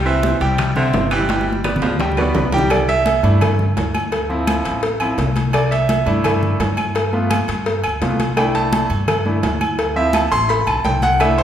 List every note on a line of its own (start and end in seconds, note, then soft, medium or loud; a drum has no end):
0.00 0.35 C2 medium
0.05 0.47 E3 medium
0.05 0.34 C4 medium
0.05 0.35 C5 medium
0.05 0.35 E5 medium
0.05 high bongo soft
0.05 high conga soft
0.23 high bongo medium
0.23 high conga loud
0.23 high timbale medium
0.23 low timbale medium
0.40 0.90 C2 loud
0.40 0.70 G3 medium
0.40 0.70 G4 medium
0.40 0.70 G5 medium
0.40 high bongo soft
0.40 high conga soft
0.40 high timbale medium
0.58 high bongo medium
0.58 high conga soft
0.58 low conga medium
0.58 high timbale medium
0.58 claves medium
0.76 0.94 D3 medium
0.76 1.05 C4 medium
0.76 1.05 C5 medium
0.76 1.06 E5 medium
0.76 high bongo soft
0.76 high conga soft
0.76 low conga medium
0.93 1.76 G1 medium
0.93 high bongo soft
0.93 low bongo medium
0.93 high conga medium
0.93 high timbale medium
0.93 low timbale medium
1.11 1.53 E3 medium
1.11 1.26 G3 medium
1.11 1.26 G4 medium
1.11 1.26 G5 medium
1.11 high timbale medium
1.11 claves medium
1.29 1.58 G3 medium
1.29 1.58 G4 medium
1.29 1.58 G5 medium
1.29 high bongo medium
1.29 high conga medium
1.29 high timbale medium
1.41 high conga medium
1.48 high bongo soft
1.52 high conga medium
1.64 1.94 B3 medium
1.64 1.94 B4 medium
1.64 1.94 D5 medium
1.64 high bongo medium
1.64 low conga medium
1.64 high timbale loud
1.64 low timbale medium
1.64 claves medium
1.76 low conga loud
1.82 2.31 D2 loud
1.82 2.01 F3 medium
1.82 high bongo soft
1.82 high timbale medium
1.99 2.15 G3 medium
1.99 2.15 G4 medium
1.99 2.15 G5 medium
1.99 high bongo medium
1.99 low conga medium
1.99 high timbale medium
2.12 low conga medium
2.17 2.47 B2 medium
2.17 2.47 B3 medium
2.17 2.47 B4 medium
2.17 2.47 D5 medium
2.17 high bongo soft
2.17 low timbale medium
2.17 claves medium
2.35 3.18 C2 medium
2.35 high bongo soft
2.35 low bongo medium
2.35 low conga medium
2.35 low timbale medium
2.52 2.68 G3 medium
2.52 2.68 G4 medium
2.52 2.68 G5 medium
2.52 low timbale medium
2.58 low conga medium
2.70 2.88 D5 medium
2.70 cowbell loud
2.70 high conga soft
2.70 low agogo loud
2.70 claves medium
2.88 3.21 E5 medium
2.88 cowbell medium
2.88 high conga soft
3.06 cowbell medium
3.06 high conga medium
3.06 low timbale medium
3.06 low agogo medium
3.23 3.73 G2 loud
3.23 3.47 A3 medium
3.23 3.47 D4 medium
3.23 3.48 E4 medium
3.23 high conga soft
3.23 low agogo medium
3.41 cowbell loud
3.41 high conga soft
3.41 low conga medium
3.41 low agogo loud
3.41 claves medium
3.59 high conga soft
3.59 low conga medium
3.76 4.59 D2 medium
3.76 cowbell medium
3.76 high conga medium
3.76 low timbale medium
3.76 low agogo medium
3.95 high conga medium
3.95 low agogo loud
3.95 claves medium
4.12 cowbell medium
4.12 high conga soft
4.12 low agogo medium
4.29 4.80 F3 medium
4.29 4.80 C4 soft
4.29 4.81 E4 medium
4.29 high conga soft
4.47 cowbell medium
4.47 high conga loud
4.47 low timbale medium
4.47 low agogo loud
4.47 claves medium
4.65 5.14 A1 loud
4.65 cowbell medium
4.65 high conga soft
4.65 low agogo medium
4.83 cowbell loud
4.83 high conga soft
5.00 5.17 F3 soft
5.00 5.17 C4 soft
5.00 5.17 E4 medium
5.00 high conga soft
5.00 low agogo loud
5.00 claves medium
5.18 6.01 C2 medium
5.18 cowbell medium
5.18 high conga medium
5.18 low timbale medium
5.36 cowbell medium
5.36 high conga medium
5.36 low agogo medium
5.53 5.71 D5 medium
5.53 cowbell loud
5.53 high conga soft
5.53 low agogo loud
5.53 claves medium
5.71 6.04 E5 medium
5.71 cowbell medium
5.71 high conga soft
5.89 cowbell medium
5.89 high conga medium
5.89 low timbale medium
5.89 low agogo medium
6.06 6.56 G2 loud
6.06 6.57 A3 medium
6.06 6.57 D4 medium
6.06 6.57 E4 medium
6.06 high conga soft
6.06 low agogo medium
6.24 cowbell loud
6.24 high conga soft
6.24 low conga medium
6.24 low agogo loud
6.24 claves medium
6.43 high conga soft
6.43 low conga medium
6.60 7.43 G2 medium
6.60 cowbell medium
6.60 high conga medium
6.60 low timbale medium
6.60 low agogo medium
6.77 high conga medium
6.77 low agogo loud
6.77 claves medium
6.95 cowbell loud
6.95 high conga soft
6.95 low agogo medium
7.13 7.36 A3 medium
7.13 7.37 B3 medium
7.13 7.37 F4 medium
7.13 high conga soft
7.30 cowbell medium
7.30 high conga loud
7.30 low timbale medium
7.30 low agogo loud
7.30 claves medium
7.48 7.81 G2 medium
7.48 cowbell medium
7.48 high conga soft
7.48 low agogo medium
7.66 cowbell loud
7.66 high conga soft
7.84 8.00 D2 medium
7.84 high conga soft
7.84 low agogo loud
7.84 claves medium
8.01 8.84 C2 medium
8.01 8.18 A3 soft
8.01 8.18 B3 soft
8.01 8.18 F4 medium
8.01 cowbell medium
8.01 high conga medium
8.01 low timbale medium
8.20 cowbell medium
8.20 high conga medium
8.20 low agogo medium
8.37 8.87 A3 medium
8.37 8.88 D4 soft
8.37 8.88 E4 medium
8.37 8.54 G5 medium
8.37 cowbell loud
8.37 high conga soft
8.37 low agogo loud
8.37 claves medium
8.55 8.88 A5 medium
8.55 cowbell medium
8.55 high conga soft
8.73 cowbell medium
8.73 high conga loud
8.73 low timbale medium
8.73 low agogo medium
8.90 9.40 G2 loud
8.90 high conga soft
8.90 low agogo medium
9.08 cowbell loud
9.08 high conga soft
9.08 low conga medium
9.08 low agogo loud
9.08 claves medium
9.25 9.41 A3 soft
9.25 9.42 D4 soft
9.25 9.42 E4 medium
9.25 high conga soft
9.43 10.26 D2 medium
9.43 cowbell medium
9.43 high conga medium
9.43 low timbale medium
9.43 low agogo medium
9.61 high conga medium
9.61 low agogo loud
9.61 claves medium
9.78 cowbell loud
9.78 high conga soft
9.78 low agogo medium
9.96 10.20 F3 medium
9.96 10.20 C4 medium
9.96 10.20 E4 medium
9.96 10.14 E5 medium
9.96 high conga soft
10.13 10.31 A5 medium
10.13 cowbell medium
10.13 high conga loud
10.13 low timbale medium
10.13 low agogo loud
10.13 claves medium
10.31 10.65 A1 loud
10.31 10.49 C6 loud
10.31 cowbell medium
10.31 high conga soft
10.31 low agogo medium
10.49 10.67 B5 medium
10.49 cowbell loud
10.49 high conga soft
10.67 10.84 B1 medium
10.67 10.84 A5 medium
10.67 high conga soft
10.67 low agogo loud
10.67 claves medium
10.84 11.43 C2 medium
10.84 11.02 G5 medium
10.84 cowbell medium
10.84 high conga medium
10.84 low timbale medium
11.02 11.20 F#5 loud
11.02 cowbell medium
11.02 high conga medium
11.02 low agogo medium
11.20 11.43 A3 medium
11.20 11.43 D4 medium
11.20 11.43 E4 medium
11.20 11.38 E5 medium
11.20 cowbell loud
11.20 high conga soft
11.20 low agogo loud
11.20 claves medium
11.38 11.43 C5 medium
11.38 cowbell medium
11.38 high conga soft